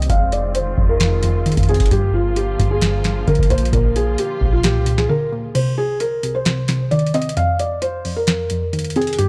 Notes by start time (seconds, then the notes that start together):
Already playing: C4
0.02 closed hi-hat
0.10 F1 F2 D#3 G#3 F4 F5, kick, closed hi-hat
0.32 D5, closed hi-hat
0.55 C5, closed hi-hat
0.78 F1 F2, kick
0.89 A#4
1.00 F2, snare, closed hi-hat
1.23 F2, closed hi-hat
1.46 D#3, closed hi-hat
1.52 closed hi-hat
1.57 F2, kick, closed hi-hat
1.63 closed hi-hat
1.69 C4 G#4, closed hi-hat
1.74 closed hi-hat
1.80 F1, kick, closed hi-hat
1.86 closed hi-hat
1.91 G1 G2 D3 F3 A#3 F4 G4, kick, closed hi-hat
2.14 F4
2.36 G4, closed hi-hat
2.59 G1 G2, kick, closed hi-hat
2.71 G#4
2.81 G2, snare, closed hi-hat
3.04 G2, snare, closed hi-hat
3.28 G1 D3 A#4, kick, closed hi-hat
3.35 F1, kick, closed hi-hat
3.43 closed hi-hat
3.50 A#1 A#3 C5, closed hi-hat
3.58 closed hi-hat
3.65 closed hi-hat
3.73 A#1 A#2 F4 A#4, kick, closed hi-hat
3.96 G#4, closed hi-hat
4.18 G4, closed hi-hat
4.41 A#1 A#2, kick
4.53 F4
4.63 A#2 G4, snare, closed hi-hat
4.75 C2
4.86 A#2, closed hi-hat
4.98 G#4, snare
5.09 D3 A#4
5.32 A#3
5.55 C3 C5, closed hi-hat, crash
5.78 G#4
6.00 A#4, closed hi-hat
6.23 C3, closed hi-hat
6.35 C5
6.45 C3, snare, closed hi-hat
6.68 C3, snare, closed hi-hat
6.91 D#3 D5, closed hi-hat
6.99 closed hi-hat
7.07 closed hi-hat
7.14 C4 D#5, closed hi-hat
7.22 closed hi-hat
7.29 closed hi-hat
7.37 F2 F5, closed hi-hat
7.59 D5, closed hi-hat
7.82 C5, closed hi-hat
8.05 F2, open hi-hat
8.16 A#4
8.27 F2, snare, closed hi-hat
8.50 F2, closed hi-hat
8.73 D#3, closed hi-hat
8.79 closed hi-hat
8.84 closed hi-hat
8.90 closed hi-hat
8.96 C4 G#4, closed hi-hat
9.02 closed hi-hat
9.07 closed hi-hat
9.13 closed hi-hat
9.18 G2 G4, closed hi-hat